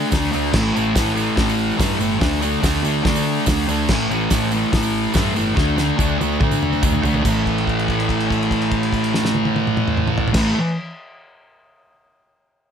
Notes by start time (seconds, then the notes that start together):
Already playing: D3 A3 D4
0.11 D2 D3 A3 D4, kick, snare, open hi-hat, tambourine
0.24 tambourine
0.33 D2 A3 D4, tambourine
0.53 A1 A2 E3 A3, kick, snare, tambourine, crash
0.66 tambourine
0.74 A1 E3 A3, tambourine
0.95 A1 A2 E3 A3, kick, snare, open hi-hat, tambourine
1.14 E3 A3, tambourine
1.36 A1 A2 E3 A3, kick, snare, open hi-hat
1.49 tambourine
1.59 tambourine
1.71 tambourine
1.77 G2 A2 E3 A3, kick, snare, open hi-hat, tambourine
1.99 G1 E3 A3, tambourine
2.20 D2 D3 A3 D4, kick, snare, open hi-hat, tambourine
2.33 tambourine
2.42 A3 D4, tambourine
2.53 tambourine
2.62 D2 D3 A3 D4, kick, snare, open hi-hat, tambourine
2.83 D2 A3 D4, tambourine
3.03 D3 A3 D4, kick, snare, open hi-hat
3.16 tambourine
3.25 tambourine
3.37 tambourine
3.46 D2 D3 A3 D4, kick, snare, open hi-hat, tambourine
3.67 D2 D4, tambourine
3.71 A3
3.79 tambourine
3.89 A1 A2 E3, kick, snare, tambourine, crash
3.93 A3
4.00 tambourine
4.10 A1 E3 A3, tambourine
4.21 tambourine
4.30 A1 A2 E3 A3, kick, snare, open hi-hat, tambourine
4.52 E3 A3, tambourine
4.63 tambourine
4.72 A1 A2 E3 A3, kick, snare, open hi-hat
4.83 tambourine
5.04 tambourine
5.13 G2 A2 E3 A3, kick, snare, open hi-hat, tambourine
5.35 G1 E3 A3, tambourine
5.46 tambourine
5.54 D2 D3 A3 D4, kick, snare, tambourine
5.68 tambourine
5.77 A3 D4, snare, tambourine
5.88 tambourine
5.97 D2 D3 A3 D4, kick, high tom, tambourine
6.09 tambourine
6.19 D2 A3 D4, high tom, tambourine
6.32 tambourine
6.39 D3 A3 D4, kick, mid tom, tambourine
6.51 mid tom, tambourine
6.63 mid tom
6.73 mid tom, tambourine
6.82 D2 D3 A3 D4, kick, mid tom, tambourine
6.93 floor tom, tambourine
7.02 D2 A3 D4, floor tom, tambourine
7.14 floor tom, tambourine
7.23 A1 A2 E3, kick, crash, tambourine
7.28 A3
7.46 kick, crash
7.58 crash
7.67 kick, crash
7.79 crash
7.88 kick, crash
8.00 crash
8.09 kick, crash
8.20 crash
8.30 kick, crash
8.43 crash
8.51 kick, crash
8.62 crash
8.71 kick, crash
8.83 crash
8.93 kick, crash
9.04 crash
9.14 snare
9.25 snare
9.35 high tom
9.45 high tom
9.56 high tom
9.67 mid tom
9.77 mid tom
9.88 mid tom
9.97 mid tom
10.07 mid tom
10.18 floor tom
10.28 floor tom
10.33 A1 A2 E3, kick, snare, crash
10.37 A3